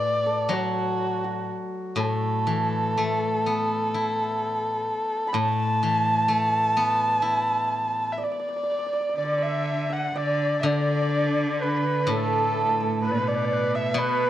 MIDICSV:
0, 0, Header, 1, 6, 480
1, 0, Start_track
1, 0, Tempo, 970874
1, 256, Time_signature, 2, 2, 24, 8
1, 1702, Tempo, 946372
1, 4102, Tempo, 985222
1, 5542, Tempo, 944882
1, 7152, End_track
2, 0, Start_track
2, 0, Title_t, "Dizi"
2, 0, Program_c, 0, 73
2, 4581, Note_on_c, 0, 74, 59
2, 4713, Note_on_c, 0, 76, 62
2, 4720, Note_off_c, 0, 74, 0
2, 4959, Note_on_c, 0, 78, 60
2, 4966, Note_off_c, 0, 76, 0
2, 5069, Note_off_c, 0, 78, 0
2, 5072, Note_on_c, 0, 74, 67
2, 5293, Note_off_c, 0, 74, 0
2, 5308, Note_on_c, 0, 74, 71
2, 5781, Note_on_c, 0, 71, 65
2, 5789, Note_off_c, 0, 74, 0
2, 5992, Note_off_c, 0, 71, 0
2, 5992, Note_on_c, 0, 71, 57
2, 6026, Note_on_c, 0, 69, 79
2, 6033, Note_off_c, 0, 71, 0
2, 6344, Note_off_c, 0, 69, 0
2, 6497, Note_on_c, 0, 71, 62
2, 6550, Note_on_c, 0, 74, 64
2, 6557, Note_off_c, 0, 71, 0
2, 6584, Note_on_c, 0, 71, 61
2, 6592, Note_off_c, 0, 74, 0
2, 6637, Note_on_c, 0, 74, 60
2, 6645, Note_off_c, 0, 71, 0
2, 6673, Note_on_c, 0, 71, 64
2, 6681, Note_off_c, 0, 74, 0
2, 6720, Note_on_c, 0, 74, 64
2, 6728, Note_off_c, 0, 71, 0
2, 6760, Note_on_c, 0, 71, 73
2, 6767, Note_off_c, 0, 74, 0
2, 6863, Note_off_c, 0, 71, 0
2, 6958, Note_on_c, 0, 74, 62
2, 7003, Note_on_c, 0, 71, 80
2, 7010, Note_off_c, 0, 74, 0
2, 7152, Note_off_c, 0, 71, 0
2, 7152, End_track
3, 0, Start_track
3, 0, Title_t, "Erhu"
3, 0, Program_c, 1, 110
3, 0, Note_on_c, 1, 74, 95
3, 263, Note_on_c, 1, 66, 76
3, 271, Note_off_c, 1, 74, 0
3, 740, Note_off_c, 1, 66, 0
3, 984, Note_on_c, 1, 69, 78
3, 2638, Note_on_c, 1, 83, 68
3, 2645, Note_off_c, 1, 69, 0
3, 2681, Note_on_c, 1, 81, 102
3, 2689, Note_off_c, 1, 83, 0
3, 4076, Note_on_c, 1, 76, 66
3, 4083, Note_off_c, 1, 81, 0
3, 4129, Note_on_c, 1, 74, 72
3, 4136, Note_off_c, 1, 76, 0
3, 4589, Note_off_c, 1, 74, 0
3, 4592, Note_on_c, 1, 74, 68
3, 4712, Note_on_c, 1, 76, 68
3, 4720, Note_off_c, 1, 74, 0
3, 4957, Note_on_c, 1, 78, 64
3, 4964, Note_off_c, 1, 76, 0
3, 5076, Note_on_c, 1, 74, 73
3, 5083, Note_off_c, 1, 78, 0
3, 5277, Note_off_c, 1, 74, 0
3, 5289, Note_on_c, 1, 76, 57
3, 5310, Note_on_c, 1, 74, 81
3, 5317, Note_off_c, 1, 76, 0
3, 5795, Note_on_c, 1, 71, 73
3, 5803, Note_off_c, 1, 74, 0
3, 6032, Note_on_c, 1, 69, 83
3, 6039, Note_off_c, 1, 71, 0
3, 6506, Note_off_c, 1, 69, 0
3, 6509, Note_on_c, 1, 71, 85
3, 6630, Note_on_c, 1, 74, 81
3, 6638, Note_off_c, 1, 71, 0
3, 6875, Note_on_c, 1, 76, 78
3, 6883, Note_off_c, 1, 74, 0
3, 6989, Note_on_c, 1, 71, 87
3, 6997, Note_off_c, 1, 76, 0
3, 7152, Note_off_c, 1, 71, 0
3, 7152, End_track
4, 0, Start_track
4, 0, Title_t, "Hammered dulcimer"
4, 0, Program_c, 2, 15
4, 0, Note_on_c, 2, 66, 60
4, 0, Note_on_c, 2, 69, 73
4, 0, Note_on_c, 2, 71, 67
4, 0, Note_on_c, 2, 74, 80
4, 126, Note_off_c, 2, 69, 0
4, 128, Note_on_c, 2, 69, 66
4, 248, Note_off_c, 2, 66, 0
4, 250, Note_on_c, 2, 66, 66
4, 612, Note_off_c, 2, 66, 0
4, 614, Note_on_c, 2, 66, 52
4, 775, Note_off_c, 2, 71, 0
4, 972, Note_off_c, 2, 69, 0
4, 974, Note_on_c, 2, 69, 57
4, 993, Note_off_c, 2, 74, 0
4, 2229, Note_off_c, 2, 66, 0
4, 2605, Note_off_c, 2, 69, 0
4, 2629, Note_on_c, 2, 83, 59
4, 2658, Note_on_c, 2, 81, 77
4, 3541, Note_off_c, 2, 83, 0
4, 4081, Note_off_c, 2, 81, 0
4, 4103, Note_on_c, 2, 74, 61
4, 4135, Note_off_c, 2, 74, 0
4, 4137, Note_on_c, 2, 74, 45
4, 4168, Note_off_c, 2, 74, 0
4, 4170, Note_on_c, 2, 74, 47
4, 4207, Note_off_c, 2, 74, 0
4, 4209, Note_on_c, 2, 74, 40
4, 4251, Note_off_c, 2, 74, 0
4, 4253, Note_on_c, 2, 74, 42
4, 4288, Note_off_c, 2, 74, 0
4, 4290, Note_on_c, 2, 74, 36
4, 4323, Note_off_c, 2, 74, 0
4, 4325, Note_on_c, 2, 74, 41
4, 4362, Note_off_c, 2, 74, 0
4, 4364, Note_on_c, 2, 74, 35
4, 4397, Note_off_c, 2, 74, 0
4, 4399, Note_on_c, 2, 74, 41
4, 4435, Note_off_c, 2, 74, 0
4, 4437, Note_on_c, 2, 74, 35
4, 4468, Note_off_c, 2, 74, 0
4, 4470, Note_on_c, 2, 74, 42
4, 4503, Note_off_c, 2, 74, 0
4, 4505, Note_on_c, 2, 74, 38
4, 4546, Note_off_c, 2, 74, 0
4, 4548, Note_on_c, 2, 74, 44
4, 4589, Note_off_c, 2, 74, 0
4, 4591, Note_on_c, 2, 74, 38
4, 4618, Note_off_c, 2, 74, 0
4, 4620, Note_on_c, 2, 74, 40
4, 4662, Note_off_c, 2, 74, 0
4, 4664, Note_on_c, 2, 74, 39
4, 4688, Note_off_c, 2, 74, 0
4, 4690, Note_on_c, 2, 74, 42
4, 4721, Note_off_c, 2, 74, 0
4, 4723, Note_on_c, 2, 74, 38
4, 4943, Note_on_c, 2, 78, 53
4, 5066, Note_off_c, 2, 74, 0
4, 5068, Note_on_c, 2, 74, 63
4, 5305, Note_off_c, 2, 74, 0
4, 5307, Note_on_c, 2, 74, 67
4, 5344, Note_off_c, 2, 74, 0
4, 5346, Note_on_c, 2, 74, 46
4, 5383, Note_off_c, 2, 74, 0
4, 5385, Note_on_c, 2, 74, 51
4, 5421, Note_off_c, 2, 74, 0
4, 5423, Note_on_c, 2, 74, 40
4, 5453, Note_off_c, 2, 74, 0
4, 5455, Note_on_c, 2, 74, 48
4, 5486, Note_off_c, 2, 74, 0
4, 5488, Note_on_c, 2, 74, 43
4, 5520, Note_off_c, 2, 74, 0
4, 5522, Note_on_c, 2, 74, 49
4, 5569, Note_off_c, 2, 74, 0
4, 5571, Note_on_c, 2, 74, 44
4, 5597, Note_off_c, 2, 74, 0
4, 5599, Note_on_c, 2, 74, 52
4, 5675, Note_off_c, 2, 74, 0
4, 5677, Note_on_c, 2, 74, 57
4, 5796, Note_on_c, 2, 71, 63
4, 6003, Note_off_c, 2, 78, 0
4, 6043, Note_on_c, 2, 69, 63
4, 6074, Note_off_c, 2, 69, 0
4, 6076, Note_on_c, 2, 69, 48
4, 6115, Note_off_c, 2, 69, 0
4, 6117, Note_on_c, 2, 69, 50
4, 6154, Note_off_c, 2, 69, 0
4, 6156, Note_on_c, 2, 69, 41
4, 6193, Note_off_c, 2, 69, 0
4, 6195, Note_on_c, 2, 69, 46
4, 6219, Note_off_c, 2, 69, 0
4, 6221, Note_on_c, 2, 69, 38
4, 6255, Note_off_c, 2, 69, 0
4, 6257, Note_on_c, 2, 69, 46
4, 6286, Note_off_c, 2, 69, 0
4, 6288, Note_on_c, 2, 69, 46
4, 6326, Note_off_c, 2, 69, 0
4, 6328, Note_on_c, 2, 69, 56
4, 6390, Note_off_c, 2, 69, 0
4, 6392, Note_on_c, 2, 69, 70
4, 6512, Note_off_c, 2, 71, 0
4, 6514, Note_on_c, 2, 71, 68
4, 6872, Note_on_c, 2, 76, 74
4, 6927, Note_off_c, 2, 74, 0
4, 6987, Note_off_c, 2, 71, 0
4, 6989, Note_on_c, 2, 71, 82
4, 7152, Note_off_c, 2, 69, 0
4, 7152, Note_off_c, 2, 71, 0
4, 7152, Note_off_c, 2, 76, 0
4, 7152, End_track
5, 0, Start_track
5, 0, Title_t, "Guzheng"
5, 0, Program_c, 3, 107
5, 0, Note_on_c, 3, 45, 62
5, 241, Note_on_c, 3, 54, 57
5, 731, Note_off_c, 3, 45, 0
5, 968, Note_on_c, 3, 45, 49
5, 1220, Note_on_c, 3, 52, 41
5, 1471, Note_on_c, 3, 57, 43
5, 1695, Note_off_c, 3, 54, 0
5, 1713, Note_on_c, 3, 59, 39
5, 1956, Note_on_c, 3, 64, 38
5, 2182, Note_off_c, 3, 52, 0
5, 2417, Note_off_c, 3, 45, 0
5, 2426, Note_off_c, 3, 57, 0
5, 2664, Note_on_c, 3, 45, 55
5, 2668, Note_off_c, 3, 59, 0
5, 2907, Note_off_c, 3, 64, 0
5, 2912, Note_on_c, 3, 52, 43
5, 3142, Note_on_c, 3, 57, 48
5, 3388, Note_on_c, 3, 59, 46
5, 3617, Note_on_c, 3, 64, 43
5, 3863, Note_off_c, 3, 52, 0
5, 4104, Note_off_c, 3, 45, 0
5, 4106, Note_off_c, 3, 57, 0
5, 4349, Note_off_c, 3, 59, 0
5, 4585, Note_off_c, 3, 64, 0
5, 5300, Note_on_c, 3, 50, 57
5, 6019, Note_on_c, 3, 45, 62
5, 6744, Note_off_c, 3, 50, 0
5, 6970, Note_on_c, 3, 47, 66
5, 6980, Note_off_c, 3, 45, 0
5, 7152, Note_off_c, 3, 47, 0
5, 7152, End_track
6, 0, Start_track
6, 0, Title_t, "Cello"
6, 0, Program_c, 4, 42
6, 4584, Note_on_c, 4, 50, 64
6, 5048, Note_off_c, 4, 50, 0
6, 5065, Note_on_c, 4, 50, 74
6, 5289, Note_off_c, 4, 50, 0
6, 5303, Note_on_c, 4, 50, 80
6, 6034, Note_on_c, 4, 45, 79
6, 6042, Note_off_c, 4, 50, 0
6, 6507, Note_on_c, 4, 47, 77
6, 6515, Note_off_c, 4, 45, 0
6, 6985, Note_off_c, 4, 47, 0
6, 6988, Note_on_c, 4, 47, 85
6, 7152, Note_off_c, 4, 47, 0
6, 7152, End_track
0, 0, End_of_file